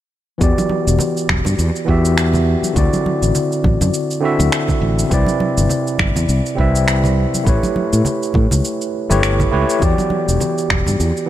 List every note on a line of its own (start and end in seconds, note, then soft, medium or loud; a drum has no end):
0.38 0.52 E2 medium
0.38 1.84 E3 medium
0.38 1.84 B3 medium
0.38 1.85 F#4 medium
0.38 kick loud
0.38 shaker soft
0.42 1.86 G4 medium
0.42 1.86 D5 medium
0.58 high conga medium
0.58 shaker soft
0.69 high conga medium
0.87 0.95 E1 medium
0.87 shaker medium
0.99 low conga medium
0.99 shaker medium
1.17 shaker soft
1.29 1.40 E1 medium
1.29 finger snap medium
1.29 kick medium
1.29 high conga medium
1.45 1.54 G2 medium
1.45 low conga medium
1.45 shaker medium
1.59 1.70 E2 medium
1.59 shaker soft
1.76 shaker soft
1.85 2.54 E2 medium
1.85 2.72 E3 medium
1.85 2.72 B3 medium
1.85 2.73 F#4 medium
1.85 2.74 G4 medium
1.85 kick medium
1.90 2.74 E5 medium
2.05 shaker medium
2.18 finger snap medium
2.18 shaker soft
2.34 low conga medium
2.34 shaker soft
2.63 high conga medium
2.63 shaker medium
2.73 2.87 D2 medium
2.73 4.19 D3 medium
2.73 4.19 C4 medium
2.73 4.20 E4 medium
2.73 4.21 F#4 medium
2.73 kick loud
2.73 shaker soft
2.78 4.21 D5 medium
2.93 high conga medium
2.93 shaker soft
3.06 high conga medium
3.22 3.30 A1 medium
3.22 shaker medium
3.35 low conga medium
3.35 shaker medium
3.52 shaker soft
3.64 3.75 A1 medium
3.64 kick medium
3.64 high conga medium
3.81 3.89 F#2 medium
3.81 low conga medium
3.81 shaker medium
3.94 shaker soft
4.11 shaker soft
4.20 5.07 D3 medium
4.20 5.08 C4 medium
4.20 5.08 E4 medium
4.20 5.09 F#4 medium
4.25 5.09 E5 medium
4.39 4.48 D2 medium
4.39 high conga medium
4.39 shaker medium
4.52 finger snap medium
4.52 shaker soft
4.68 kick medium
4.68 low conga medium
4.68 shaker soft
4.82 5.02 A1 medium
4.99 shaker medium
5.08 5.22 C2 medium
5.08 6.54 C3 medium
5.08 6.55 C4 medium
5.08 6.55 E4 medium
5.08 6.56 B4 medium
5.08 kick loud
5.08 shaker soft
5.14 6.57 D5 medium
5.26 high conga medium
5.26 shaker soft
5.40 high conga medium
5.57 5.66 G1 medium
5.57 shaker medium
5.69 low conga medium
5.69 shaker medium
5.87 shaker soft
5.99 6.11 G1 medium
5.99 finger snap medium
5.99 kick loud
5.99 high conga medium
6.16 6.25 E2 medium
6.16 low conga medium
6.16 shaker medium
6.29 6.40 C2 medium
6.29 shaker medium
6.46 shaker soft
6.55 7.25 C2 medium
6.55 7.42 C3 medium
6.55 7.43 C4 medium
6.55 7.44 E4 medium
6.55 7.44 B4 medium
6.55 kick medium
6.61 7.45 E5 medium
6.75 shaker medium
6.88 finger snap medium
6.88 shaker soft
7.04 low conga medium
7.04 shaker soft
7.34 high conga medium
7.34 shaker medium
7.44 7.58 A1 medium
7.44 8.89 A3 medium
7.44 8.90 E4 medium
7.44 8.91 G4 medium
7.44 kick loud
7.44 shaker soft
7.48 8.91 B4 medium
7.48 8.92 C#5 medium
7.63 high conga medium
7.63 shaker soft
7.76 high conga medium
7.93 8.01 A2 medium
7.93 shaker medium
8.05 low conga medium
8.05 shaker soft
8.23 shaker soft
8.34 8.46 A2 medium
8.34 kick loud
8.34 high conga medium
8.51 8.60 C#2 medium
8.51 low conga medium
8.51 shaker medium
8.65 shaker medium
8.81 shaker soft
9.09 9.46 G1 medium
9.09 9.49 A3 medium
9.09 9.49 E4 medium
9.09 9.50 G4 medium
9.09 9.50 B4 medium
9.09 9.50 C#5 medium
9.09 high conga medium
9.09 shaker medium
9.23 finger snap medium
9.23 shaker soft
9.40 kick medium
9.40 low conga medium
9.40 shaker soft
9.51 9.64 C#2 medium
9.51 9.65 A3 medium
9.51 9.66 E4 medium
9.51 9.66 G4 medium
9.51 9.66 B4 medium
9.51 9.67 C#5 medium
9.70 shaker medium
9.79 9.93 E2 medium
9.79 11.25 E3 medium
9.79 11.25 B3 medium
9.79 11.26 F#4 medium
9.79 11.27 G4 medium
9.79 kick loud
9.79 shaker soft
9.84 11.27 D5 medium
9.98 high conga medium
9.98 shaker soft
10.10 high conga medium
10.28 10.37 E1 medium
10.28 shaker medium
10.40 low conga medium
10.40 shaker soft
10.58 shaker soft
10.70 10.81 E1 medium
10.70 finger snap medium
10.70 kick medium
10.70 high conga medium
10.87 10.95 G2 medium
10.87 low conga medium
10.87 shaker medium
11.00 11.11 E2 medium
11.00 shaker soft
11.17 shaker soft
11.26 11.29 E3 medium